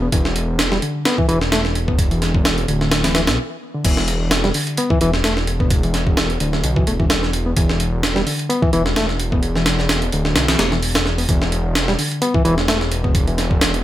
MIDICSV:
0, 0, Header, 1, 4, 480
1, 0, Start_track
1, 0, Tempo, 465116
1, 129, Time_signature, 4, 2, 24, 8
1, 14282, End_track
2, 0, Start_track
2, 0, Title_t, "Reed electric piano"
2, 0, Program_c, 0, 4
2, 20, Note_on_c, 0, 59, 76
2, 65, Note_off_c, 0, 59, 0
2, 130, Note_on_c, 0, 52, 80
2, 599, Note_off_c, 0, 52, 0
2, 741, Note_on_c, 0, 55, 96
2, 785, Note_off_c, 0, 55, 0
2, 852, Note_on_c, 0, 50, 83
2, 1080, Note_off_c, 0, 50, 0
2, 1093, Note_on_c, 0, 59, 97
2, 1209, Note_off_c, 0, 59, 0
2, 1223, Note_on_c, 0, 52, 103
2, 1296, Note_off_c, 0, 52, 0
2, 1329, Note_on_c, 0, 52, 102
2, 1420, Note_off_c, 0, 52, 0
2, 1572, Note_on_c, 0, 57, 100
2, 1661, Note_off_c, 0, 57, 0
2, 1941, Note_on_c, 0, 59, 76
2, 2015, Note_off_c, 0, 59, 0
2, 2182, Note_on_c, 0, 52, 75
2, 2648, Note_off_c, 0, 52, 0
2, 2771, Note_on_c, 0, 50, 82
2, 3128, Note_off_c, 0, 50, 0
2, 3141, Note_on_c, 0, 52, 78
2, 3239, Note_off_c, 0, 52, 0
2, 3253, Note_on_c, 0, 52, 80
2, 3305, Note_off_c, 0, 52, 0
2, 3383, Note_on_c, 0, 59, 77
2, 3480, Note_off_c, 0, 59, 0
2, 3863, Note_on_c, 0, 50, 76
2, 3960, Note_off_c, 0, 50, 0
2, 3974, Note_on_c, 0, 52, 83
2, 4441, Note_off_c, 0, 52, 0
2, 4582, Note_on_c, 0, 55, 99
2, 4626, Note_off_c, 0, 55, 0
2, 4691, Note_on_c, 0, 50, 78
2, 4919, Note_off_c, 0, 50, 0
2, 4933, Note_on_c, 0, 59, 96
2, 5049, Note_off_c, 0, 59, 0
2, 5063, Note_on_c, 0, 52, 106
2, 5136, Note_off_c, 0, 52, 0
2, 5171, Note_on_c, 0, 52, 104
2, 5260, Note_off_c, 0, 52, 0
2, 5411, Note_on_c, 0, 57, 100
2, 5500, Note_off_c, 0, 57, 0
2, 5781, Note_on_c, 0, 59, 77
2, 5855, Note_off_c, 0, 59, 0
2, 6020, Note_on_c, 0, 52, 75
2, 6487, Note_off_c, 0, 52, 0
2, 6610, Note_on_c, 0, 50, 81
2, 6968, Note_off_c, 0, 50, 0
2, 6983, Note_on_c, 0, 52, 78
2, 7080, Note_off_c, 0, 52, 0
2, 7091, Note_on_c, 0, 57, 78
2, 7144, Note_off_c, 0, 57, 0
2, 7223, Note_on_c, 0, 52, 81
2, 7266, Note_off_c, 0, 52, 0
2, 7700, Note_on_c, 0, 59, 78
2, 7745, Note_off_c, 0, 59, 0
2, 7812, Note_on_c, 0, 52, 80
2, 8280, Note_off_c, 0, 52, 0
2, 8417, Note_on_c, 0, 55, 102
2, 8464, Note_off_c, 0, 55, 0
2, 8527, Note_on_c, 0, 50, 82
2, 8757, Note_off_c, 0, 50, 0
2, 8768, Note_on_c, 0, 59, 100
2, 8887, Note_off_c, 0, 59, 0
2, 8901, Note_on_c, 0, 52, 103
2, 8975, Note_off_c, 0, 52, 0
2, 9012, Note_on_c, 0, 52, 106
2, 9101, Note_off_c, 0, 52, 0
2, 9249, Note_on_c, 0, 57, 106
2, 9339, Note_off_c, 0, 57, 0
2, 9622, Note_on_c, 0, 59, 79
2, 9696, Note_off_c, 0, 59, 0
2, 9862, Note_on_c, 0, 52, 77
2, 10328, Note_off_c, 0, 52, 0
2, 10453, Note_on_c, 0, 50, 78
2, 10809, Note_off_c, 0, 50, 0
2, 10823, Note_on_c, 0, 52, 78
2, 10920, Note_off_c, 0, 52, 0
2, 10929, Note_on_c, 0, 57, 81
2, 10983, Note_off_c, 0, 57, 0
2, 11061, Note_on_c, 0, 52, 80
2, 11106, Note_off_c, 0, 52, 0
2, 11539, Note_on_c, 0, 59, 77
2, 11584, Note_off_c, 0, 59, 0
2, 11649, Note_on_c, 0, 52, 80
2, 12118, Note_off_c, 0, 52, 0
2, 12260, Note_on_c, 0, 55, 98
2, 12305, Note_off_c, 0, 55, 0
2, 12367, Note_on_c, 0, 50, 82
2, 12597, Note_off_c, 0, 50, 0
2, 12608, Note_on_c, 0, 59, 100
2, 12727, Note_off_c, 0, 59, 0
2, 12738, Note_on_c, 0, 52, 102
2, 12814, Note_off_c, 0, 52, 0
2, 12848, Note_on_c, 0, 52, 107
2, 12939, Note_off_c, 0, 52, 0
2, 13088, Note_on_c, 0, 57, 99
2, 13179, Note_off_c, 0, 57, 0
2, 13459, Note_on_c, 0, 59, 78
2, 13534, Note_off_c, 0, 59, 0
2, 13699, Note_on_c, 0, 52, 79
2, 14167, Note_off_c, 0, 52, 0
2, 14282, End_track
3, 0, Start_track
3, 0, Title_t, "Detuned saw bass"
3, 0, Program_c, 1, 39
3, 130, Note_on_c, 1, 28, 96
3, 823, Note_off_c, 1, 28, 0
3, 1329, Note_on_c, 1, 28, 95
3, 2742, Note_off_c, 1, 28, 0
3, 2771, Note_on_c, 1, 26, 88
3, 3381, Note_on_c, 1, 35, 87
3, 3397, Note_off_c, 1, 26, 0
3, 3490, Note_off_c, 1, 35, 0
3, 3969, Note_on_c, 1, 28, 96
3, 4663, Note_off_c, 1, 28, 0
3, 5170, Note_on_c, 1, 28, 95
3, 6583, Note_off_c, 1, 28, 0
3, 6609, Note_on_c, 1, 26, 86
3, 6845, Note_off_c, 1, 26, 0
3, 6851, Note_on_c, 1, 35, 102
3, 7057, Note_off_c, 1, 35, 0
3, 7089, Note_on_c, 1, 28, 94
3, 7783, Note_off_c, 1, 28, 0
3, 7810, Note_on_c, 1, 28, 99
3, 8503, Note_off_c, 1, 28, 0
3, 9012, Note_on_c, 1, 28, 96
3, 10424, Note_off_c, 1, 28, 0
3, 10453, Note_on_c, 1, 26, 86
3, 10684, Note_off_c, 1, 26, 0
3, 10690, Note_on_c, 1, 35, 96
3, 10897, Note_off_c, 1, 35, 0
3, 10931, Note_on_c, 1, 28, 92
3, 11624, Note_off_c, 1, 28, 0
3, 11649, Note_on_c, 1, 28, 101
3, 12343, Note_off_c, 1, 28, 0
3, 12850, Note_on_c, 1, 28, 97
3, 14263, Note_off_c, 1, 28, 0
3, 14282, End_track
4, 0, Start_track
4, 0, Title_t, "Drums"
4, 128, Note_on_c, 9, 42, 88
4, 129, Note_on_c, 9, 36, 109
4, 231, Note_off_c, 9, 42, 0
4, 232, Note_off_c, 9, 36, 0
4, 260, Note_on_c, 9, 38, 47
4, 363, Note_off_c, 9, 38, 0
4, 369, Note_on_c, 9, 42, 67
4, 472, Note_off_c, 9, 42, 0
4, 608, Note_on_c, 9, 38, 119
4, 608, Note_on_c, 9, 42, 89
4, 711, Note_off_c, 9, 38, 0
4, 711, Note_off_c, 9, 42, 0
4, 741, Note_on_c, 9, 38, 49
4, 844, Note_off_c, 9, 38, 0
4, 849, Note_on_c, 9, 42, 62
4, 952, Note_off_c, 9, 42, 0
4, 1088, Note_on_c, 9, 38, 111
4, 1088, Note_on_c, 9, 42, 78
4, 1191, Note_off_c, 9, 38, 0
4, 1191, Note_off_c, 9, 42, 0
4, 1220, Note_on_c, 9, 36, 94
4, 1323, Note_off_c, 9, 36, 0
4, 1329, Note_on_c, 9, 42, 70
4, 1432, Note_off_c, 9, 42, 0
4, 1460, Note_on_c, 9, 38, 51
4, 1563, Note_off_c, 9, 38, 0
4, 1569, Note_on_c, 9, 38, 121
4, 1569, Note_on_c, 9, 42, 90
4, 1672, Note_off_c, 9, 38, 0
4, 1672, Note_off_c, 9, 42, 0
4, 1701, Note_on_c, 9, 38, 44
4, 1804, Note_off_c, 9, 38, 0
4, 1810, Note_on_c, 9, 42, 67
4, 1913, Note_off_c, 9, 42, 0
4, 1941, Note_on_c, 9, 36, 95
4, 2044, Note_off_c, 9, 36, 0
4, 2049, Note_on_c, 9, 36, 110
4, 2049, Note_on_c, 9, 42, 91
4, 2152, Note_off_c, 9, 36, 0
4, 2153, Note_off_c, 9, 42, 0
4, 2180, Note_on_c, 9, 42, 42
4, 2283, Note_off_c, 9, 42, 0
4, 2290, Note_on_c, 9, 38, 40
4, 2290, Note_on_c, 9, 42, 68
4, 2393, Note_off_c, 9, 38, 0
4, 2393, Note_off_c, 9, 42, 0
4, 2420, Note_on_c, 9, 36, 100
4, 2524, Note_off_c, 9, 36, 0
4, 2530, Note_on_c, 9, 38, 123
4, 2530, Note_on_c, 9, 42, 88
4, 2633, Note_off_c, 9, 38, 0
4, 2633, Note_off_c, 9, 42, 0
4, 2660, Note_on_c, 9, 42, 44
4, 2763, Note_off_c, 9, 42, 0
4, 2770, Note_on_c, 9, 42, 71
4, 2873, Note_off_c, 9, 42, 0
4, 2901, Note_on_c, 9, 38, 43
4, 3004, Note_off_c, 9, 38, 0
4, 3008, Note_on_c, 9, 38, 106
4, 3008, Note_on_c, 9, 42, 82
4, 3111, Note_off_c, 9, 38, 0
4, 3111, Note_off_c, 9, 42, 0
4, 3139, Note_on_c, 9, 38, 106
4, 3139, Note_on_c, 9, 42, 77
4, 3242, Note_off_c, 9, 38, 0
4, 3242, Note_off_c, 9, 42, 0
4, 3248, Note_on_c, 9, 38, 102
4, 3248, Note_on_c, 9, 42, 82
4, 3352, Note_off_c, 9, 38, 0
4, 3352, Note_off_c, 9, 42, 0
4, 3379, Note_on_c, 9, 38, 111
4, 3379, Note_on_c, 9, 42, 82
4, 3482, Note_off_c, 9, 38, 0
4, 3482, Note_off_c, 9, 42, 0
4, 3968, Note_on_c, 9, 42, 91
4, 3968, Note_on_c, 9, 49, 93
4, 3969, Note_on_c, 9, 36, 114
4, 4072, Note_off_c, 9, 36, 0
4, 4072, Note_off_c, 9, 42, 0
4, 4072, Note_off_c, 9, 49, 0
4, 4099, Note_on_c, 9, 38, 48
4, 4203, Note_off_c, 9, 38, 0
4, 4208, Note_on_c, 9, 42, 70
4, 4311, Note_off_c, 9, 42, 0
4, 4448, Note_on_c, 9, 38, 115
4, 4448, Note_on_c, 9, 42, 91
4, 4551, Note_off_c, 9, 38, 0
4, 4551, Note_off_c, 9, 42, 0
4, 4581, Note_on_c, 9, 38, 48
4, 4684, Note_off_c, 9, 38, 0
4, 4688, Note_on_c, 9, 46, 87
4, 4792, Note_off_c, 9, 46, 0
4, 4819, Note_on_c, 9, 42, 45
4, 4922, Note_off_c, 9, 42, 0
4, 4927, Note_on_c, 9, 42, 91
4, 5030, Note_off_c, 9, 42, 0
4, 5060, Note_on_c, 9, 36, 98
4, 5163, Note_off_c, 9, 36, 0
4, 5169, Note_on_c, 9, 42, 73
4, 5272, Note_off_c, 9, 42, 0
4, 5300, Note_on_c, 9, 38, 51
4, 5403, Note_off_c, 9, 38, 0
4, 5408, Note_on_c, 9, 38, 118
4, 5408, Note_on_c, 9, 42, 91
4, 5511, Note_off_c, 9, 38, 0
4, 5511, Note_off_c, 9, 42, 0
4, 5541, Note_on_c, 9, 38, 47
4, 5644, Note_off_c, 9, 38, 0
4, 5649, Note_on_c, 9, 42, 72
4, 5752, Note_off_c, 9, 42, 0
4, 5780, Note_on_c, 9, 36, 97
4, 5883, Note_off_c, 9, 36, 0
4, 5887, Note_on_c, 9, 42, 93
4, 5889, Note_on_c, 9, 36, 113
4, 5991, Note_off_c, 9, 42, 0
4, 5992, Note_off_c, 9, 36, 0
4, 6021, Note_on_c, 9, 42, 42
4, 6124, Note_off_c, 9, 42, 0
4, 6129, Note_on_c, 9, 38, 41
4, 6129, Note_on_c, 9, 42, 66
4, 6232, Note_off_c, 9, 38, 0
4, 6232, Note_off_c, 9, 42, 0
4, 6260, Note_on_c, 9, 36, 99
4, 6364, Note_off_c, 9, 36, 0
4, 6369, Note_on_c, 9, 38, 122
4, 6369, Note_on_c, 9, 42, 89
4, 6473, Note_off_c, 9, 38, 0
4, 6473, Note_off_c, 9, 42, 0
4, 6500, Note_on_c, 9, 42, 46
4, 6603, Note_off_c, 9, 42, 0
4, 6608, Note_on_c, 9, 42, 73
4, 6711, Note_off_c, 9, 42, 0
4, 6740, Note_on_c, 9, 38, 43
4, 6844, Note_off_c, 9, 38, 0
4, 6848, Note_on_c, 9, 42, 90
4, 6951, Note_off_c, 9, 42, 0
4, 6980, Note_on_c, 9, 36, 101
4, 7084, Note_off_c, 9, 36, 0
4, 7090, Note_on_c, 9, 42, 80
4, 7193, Note_off_c, 9, 42, 0
4, 7220, Note_on_c, 9, 36, 90
4, 7324, Note_off_c, 9, 36, 0
4, 7327, Note_on_c, 9, 38, 118
4, 7327, Note_on_c, 9, 42, 94
4, 7430, Note_off_c, 9, 38, 0
4, 7430, Note_off_c, 9, 42, 0
4, 7461, Note_on_c, 9, 38, 38
4, 7564, Note_off_c, 9, 38, 0
4, 7569, Note_on_c, 9, 42, 73
4, 7672, Note_off_c, 9, 42, 0
4, 7807, Note_on_c, 9, 42, 91
4, 7809, Note_on_c, 9, 36, 113
4, 7911, Note_off_c, 9, 42, 0
4, 7912, Note_off_c, 9, 36, 0
4, 7941, Note_on_c, 9, 38, 47
4, 8044, Note_off_c, 9, 38, 0
4, 8049, Note_on_c, 9, 42, 68
4, 8152, Note_off_c, 9, 42, 0
4, 8290, Note_on_c, 9, 38, 125
4, 8290, Note_on_c, 9, 42, 91
4, 8393, Note_off_c, 9, 38, 0
4, 8393, Note_off_c, 9, 42, 0
4, 8422, Note_on_c, 9, 38, 49
4, 8525, Note_off_c, 9, 38, 0
4, 8532, Note_on_c, 9, 46, 86
4, 8635, Note_off_c, 9, 46, 0
4, 8662, Note_on_c, 9, 42, 45
4, 8765, Note_off_c, 9, 42, 0
4, 8771, Note_on_c, 9, 42, 88
4, 8874, Note_off_c, 9, 42, 0
4, 8901, Note_on_c, 9, 36, 101
4, 9004, Note_off_c, 9, 36, 0
4, 9009, Note_on_c, 9, 42, 70
4, 9112, Note_off_c, 9, 42, 0
4, 9141, Note_on_c, 9, 38, 51
4, 9244, Note_off_c, 9, 38, 0
4, 9249, Note_on_c, 9, 38, 120
4, 9249, Note_on_c, 9, 42, 93
4, 9353, Note_off_c, 9, 38, 0
4, 9353, Note_off_c, 9, 42, 0
4, 9382, Note_on_c, 9, 38, 44
4, 9485, Note_off_c, 9, 38, 0
4, 9490, Note_on_c, 9, 42, 79
4, 9593, Note_off_c, 9, 42, 0
4, 9621, Note_on_c, 9, 36, 87
4, 9724, Note_off_c, 9, 36, 0
4, 9728, Note_on_c, 9, 42, 62
4, 9831, Note_off_c, 9, 42, 0
4, 9861, Note_on_c, 9, 38, 42
4, 9964, Note_off_c, 9, 38, 0
4, 9968, Note_on_c, 9, 38, 101
4, 9968, Note_on_c, 9, 42, 76
4, 10071, Note_off_c, 9, 38, 0
4, 10071, Note_off_c, 9, 42, 0
4, 10100, Note_on_c, 9, 38, 39
4, 10203, Note_off_c, 9, 38, 0
4, 10209, Note_on_c, 9, 38, 122
4, 10209, Note_on_c, 9, 42, 89
4, 10312, Note_off_c, 9, 38, 0
4, 10312, Note_off_c, 9, 42, 0
4, 10340, Note_on_c, 9, 42, 46
4, 10443, Note_off_c, 9, 42, 0
4, 10449, Note_on_c, 9, 42, 70
4, 10552, Note_off_c, 9, 42, 0
4, 10578, Note_on_c, 9, 38, 45
4, 10682, Note_off_c, 9, 38, 0
4, 10688, Note_on_c, 9, 38, 111
4, 10688, Note_on_c, 9, 42, 82
4, 10791, Note_off_c, 9, 38, 0
4, 10791, Note_off_c, 9, 42, 0
4, 10820, Note_on_c, 9, 38, 108
4, 10820, Note_on_c, 9, 42, 82
4, 10923, Note_off_c, 9, 38, 0
4, 10923, Note_off_c, 9, 42, 0
4, 10929, Note_on_c, 9, 38, 106
4, 10929, Note_on_c, 9, 42, 81
4, 11032, Note_off_c, 9, 38, 0
4, 11032, Note_off_c, 9, 42, 0
4, 11063, Note_on_c, 9, 38, 45
4, 11166, Note_off_c, 9, 38, 0
4, 11171, Note_on_c, 9, 46, 78
4, 11275, Note_off_c, 9, 46, 0
4, 11302, Note_on_c, 9, 38, 109
4, 11302, Note_on_c, 9, 42, 84
4, 11406, Note_off_c, 9, 38, 0
4, 11406, Note_off_c, 9, 42, 0
4, 11411, Note_on_c, 9, 38, 42
4, 11514, Note_off_c, 9, 38, 0
4, 11542, Note_on_c, 9, 46, 73
4, 11645, Note_off_c, 9, 46, 0
4, 11649, Note_on_c, 9, 36, 112
4, 11649, Note_on_c, 9, 42, 89
4, 11752, Note_off_c, 9, 36, 0
4, 11752, Note_off_c, 9, 42, 0
4, 11782, Note_on_c, 9, 38, 46
4, 11885, Note_off_c, 9, 38, 0
4, 11890, Note_on_c, 9, 42, 69
4, 11993, Note_off_c, 9, 42, 0
4, 12130, Note_on_c, 9, 38, 122
4, 12130, Note_on_c, 9, 42, 94
4, 12233, Note_off_c, 9, 38, 0
4, 12233, Note_off_c, 9, 42, 0
4, 12262, Note_on_c, 9, 38, 52
4, 12365, Note_off_c, 9, 38, 0
4, 12371, Note_on_c, 9, 46, 85
4, 12474, Note_off_c, 9, 46, 0
4, 12503, Note_on_c, 9, 42, 45
4, 12606, Note_off_c, 9, 42, 0
4, 12608, Note_on_c, 9, 42, 94
4, 12712, Note_off_c, 9, 42, 0
4, 12740, Note_on_c, 9, 36, 100
4, 12843, Note_off_c, 9, 36, 0
4, 12849, Note_on_c, 9, 42, 67
4, 12953, Note_off_c, 9, 42, 0
4, 12980, Note_on_c, 9, 38, 52
4, 13083, Note_off_c, 9, 38, 0
4, 13089, Note_on_c, 9, 38, 124
4, 13089, Note_on_c, 9, 42, 91
4, 13192, Note_off_c, 9, 38, 0
4, 13192, Note_off_c, 9, 42, 0
4, 13221, Note_on_c, 9, 38, 45
4, 13324, Note_off_c, 9, 38, 0
4, 13329, Note_on_c, 9, 42, 72
4, 13432, Note_off_c, 9, 42, 0
4, 13460, Note_on_c, 9, 36, 95
4, 13563, Note_off_c, 9, 36, 0
4, 13568, Note_on_c, 9, 36, 111
4, 13568, Note_on_c, 9, 42, 88
4, 13671, Note_off_c, 9, 42, 0
4, 13672, Note_off_c, 9, 36, 0
4, 13699, Note_on_c, 9, 42, 44
4, 13803, Note_off_c, 9, 42, 0
4, 13809, Note_on_c, 9, 38, 40
4, 13809, Note_on_c, 9, 42, 70
4, 13912, Note_off_c, 9, 38, 0
4, 13912, Note_off_c, 9, 42, 0
4, 13940, Note_on_c, 9, 36, 96
4, 14043, Note_off_c, 9, 36, 0
4, 14050, Note_on_c, 9, 38, 121
4, 14050, Note_on_c, 9, 42, 90
4, 14153, Note_off_c, 9, 38, 0
4, 14153, Note_off_c, 9, 42, 0
4, 14181, Note_on_c, 9, 42, 46
4, 14282, Note_off_c, 9, 42, 0
4, 14282, End_track
0, 0, End_of_file